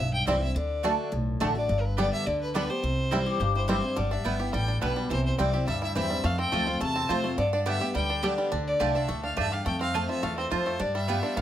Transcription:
Already playing: E5
0.00 B1 G2
0.14 G5
0.26 C2 E3 G3 C4 E4 C5 D5 G5
0.42 C4 E4 E5
0.55 D2 D3 D5
0.83 D3 A3 D4 F#4 D5 A5
1.12 B1 A2
1.40 A1 D3 A3 D4 F#4 D5 A5
1.55 D4 F#4 D5
1.69 G1 G2
1.80 A#4
1.85 B4
1.97 D3 G3 B3 D4 G4 D5 G5
2.13 E5
2.26 D2 D3 D5
2.41 B4
2.54 D3 G3 B3 D4 G4 B4 D5 G5
2.69 B3 G4 C5
2.83 C2 C3
3.11 E3 G3 C4 E4 C5 G5
3.26 G4
3.40 G1 G2 G4
3.55 E4 C5
3.68 E3 G3 C4 E4 G4 C5 G5
3.83 C4 E4
3.96 G1 D3 G3 D5
4.11 D4 E5
4.24 G1 G3 B3 E4 B4 G5
4.39 B3 E4 G4
4.53 A1 A2 G3 G5
4.68 D4
4.81 B1 B2 D3 B3 E4 B4 G5
4.96 G3
5.10 C2 C3 E3 C5
5.25 C5
5.38 C2 E3 G3 C4 E4 C5 D5 G5
5.54 C4 E4 G4
5.67 D2 G2 G3 E5
5.82 E4 E5
5.95 E2 E3 G3 C4 E4 C5 E5 G5
6.10 G3 C4 E4
6.24 F2 A3 F5
6.39 C4 G5
6.52 D2 F3 A3 C4 F4 C5 A5
6.67 C4 F4
6.81 E2 C3 A3 A5
6.96 C4
7.09 F2 F3 A3 C4 F4 C5 A5
7.24 A3 C4 F4
7.38 G2 D3 D5
7.53 D4 D5
7.66 D3 G3 B3 G4 D5 E5 G5
7.80 B3 G4
7.95 D2 D3 G3 G5
8.10 D4
8.23 D3 G3 B3 G4 D5 G5
8.38 G3
8.52 D2 D3 D4
8.67 D5
8.79 C2 D3 A3 D4 F4 G4 D5 A5
8.95 D4 E5
9.08 D2 A2 A3
9.23 D4 F5
9.37 E2 G2 A3 D4 F4 D5 E5 A5
9.52 G4 F5
9.66 F2 A3 G5
9.81 C4 F5
9.94 F3 A3 C4 F4 C5 A5
10.09 F4 E5
10.23 E2 E3 A3 F5
10.38 C4 C5
10.51 F2 F3 C4 F4 C5 A5
10.66 A3
10.80 G2 G3 D4 D5
10.95 G3 E5
11.08 G3 B3 F4 B4 G5
11.23 D4
11.37 A1 D3 B3 F5

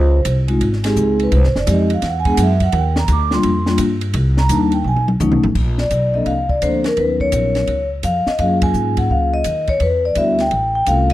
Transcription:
Already playing: C#2 C5
0.25 C2, kick, hi-hat pedal, ride
0.48 G#3 C4 D#4 F4, ride
0.61 G#1, kick, ride
0.73 snare
0.84 G#3 C4 D#4 G4 G#4, snare, ride
0.96 C#2, kick, hi-hat pedal
1.01 G#4
1.19 B4, ride
1.32 C2 C5, kick, ride
1.43 G#1, snare
1.55 F1 D5, snare
1.66 F2 G#3 C4 D#4 G4, kick, hi-hat pedal, ride
1.72 D#5
1.90 F5, ride
2.02 E2, kick, snare, ride
2.07 F#5
2.20 G#5
2.25 G#3 B3 D4 G#4, kick, ride
2.30 F#5
2.37 F#2, kick, hi-hat pedal, ride
2.42 E5
2.60 F#5, kick, ride
2.72 D#2, kick, ride
2.78 G5
2.96 A#5, snare
3.08 D2, kick, hi-hat pedal, ride
3.13 D6
3.31 G3 A#3 D4 F4 C6, snare
3.43 F2, kick, ride
3.66 G3 A#3 D4 F4, snare
3.78 G2, kick, hi-hat pedal, ride
4.01 ride
4.14 C2, kick, ride
4.37 A#5, snare
4.49 D#2 G3 A#3 D4 D#4 A5, kick, hi-hat pedal, ride
4.72 G5, ride
4.84 B1 G#5
4.96 high tom
5.08 high tom
5.20 C#2 F#3 A3 C#4 D#4, hi-hat pedal, mid tom
5.32 B1, mid tom
5.43 A1, floor tom
5.55 A#1, kick, crash
5.78 D5, snare
5.91 B1, kick, hi-hat pedal, ride
6.14 F3 A#3 C4 D4 A4 D#5
6.26 C2 F5, kick, ride
6.49 D5, kick
6.62 D2 F3 A#3 C4 D4 A4 C5, kick, hi-hat pedal, ride
6.84 A#4, snare, ride
6.97 D#2 F#3 B3 C#4 D#4 A#4 B4, kick, ride
7.20 C#5, kick
7.32 A#1, kick, hi-hat pedal, ride
7.55 snare, ride
7.67 C#2, kick, ride
8.03 F2 F5, kick, hi-hat pedal, ride
8.26 D#5, muted upright bass stroke, snare
8.39 F#2 F#3 A#3 C#4 F4 G#4 F5, kick, ride
8.62 G#5, kick, ride
8.74 G#2, hi-hat pedal
8.97 F#5, kick, ride
9.10 C#2 F5, kick
9.34 D#5
9.44 D#2, kick, hi-hat pedal, ride
9.67 C#5, kick, ride
9.80 E2 B4, kick, ride
10.05 D5
10.15 D2 G3 B3 D4 E4 F#4 E5, kick, hi-hat pedal, ride
10.38 G5, snare, ride
10.51 A1, kick, ride
10.75 G5
10.86 C2 A3 C4 C#4 F4 A4 F5, kick, hi-hat pedal, ride
11.10 ride

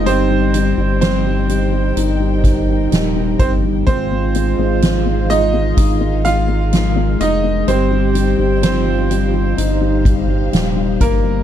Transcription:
Already playing: D#4 C5
0.06 G1 G3 C4 D#4 G4 C5 G5, closed hi-hat
0.31 G3
0.54 G3, closed hi-hat
0.77 G1 G3
1.01 G3 C4 D#4 C5, snare, closed hi-hat
1.26 G3
1.49 G3, closed hi-hat
1.73 G3
1.96 G1 D#4 A#4, closed hi-hat
2.20 G3
2.44 G3, kick, snare, closed hi-hat
2.68 G3
2.91 D#1 G3, snare, closed hi-hat
3.16 G3
3.39 G1 G3 C4 C5, kick, closed hi-hat
3.64 G3
3.87 G#1 G#3 C4 D#4 F4 G#4 C5 F5, kick, closed hi-hat
4.12 G#3
4.35 G#3, closed hi-hat
4.58 G#1 G#3
4.82 G#3, snare, closed hi-hat
5.06 G#3
5.30 G#3 D#4 D#5, closed hi-hat
5.54 G#3
5.77 G#1 D#4 A#4, kick, closed hi-hat
6.01 G#3
6.25 G#3 F4 F5, snare, closed hi-hat
6.49 G#3
6.73 G#3, snare, closed hi-hat
6.96 G#3
7.20 F1 G#3 D#4 D#5, closed hi-hat
7.44 G#3
7.67 G1 G3 C4 D#4 G4 C5 G5, closed hi-hat
7.91 G3
8.15 G3, closed hi-hat
8.38 G1 G3
8.63 G3 C4 F4 C5, snare, closed hi-hat
8.87 G3
9.11 G3, closed hi-hat
9.34 G3
9.57 G1 D#4 F5, closed hi-hat
9.81 G3
10.05 G3 G4, kick, closed hi-hat
10.29 G3
10.53 D#1 G3, snare, closed hi-hat
10.77 G3
11.00 G1 G3 A#3 A#4, kick, closed hi-hat
11.24 G3

